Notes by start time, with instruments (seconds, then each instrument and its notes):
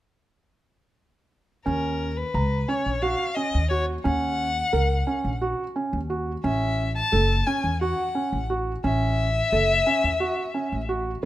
1.66 upright bass D#2, felt piano C#4, violin A#4
2.17 violin B4
2.34 upright bass C#2, felt piano A#5
2.68 felt piano C#4, violin C#5
2.86 upright bass A#1
3.02 felt piano F#4, violin F5
3.35 felt piano C#4, violin D#5
3.54 upright bass D#2
3.69 felt piano F#4, violin C#5
4.04 upright bass D#2, felt piano C#4, violin F#5
4.73 upright bass C#2, felt piano A#4
5.07 felt piano C#4
5.24 upright bass A#1
5.42 felt piano F#4
5.76 felt piano C#4
5.93 upright bass D#2
6.10 felt piano F#4
6.44 upright bass A1, felt piano C#4, violin E5
6.95 violin A5
7.12 upright bass F#1, felt piano A4
7.46 felt piano C#4, violin G#5
7.64 upright bass E2
7.81 felt piano F#4, violin F#5
8.15 felt piano C#4
8.33 upright bass A1
8.50 felt piano F#4
8.84 upright bass A1, felt piano C#4, violin E5
9.52 upright bass F#1, felt piano A4
9.87 felt piano C#4
10.04 upright bass E2
10.20 felt piano F#4
10.54 felt piano C#4
10.72 upright bass A1
10.89 felt piano F#4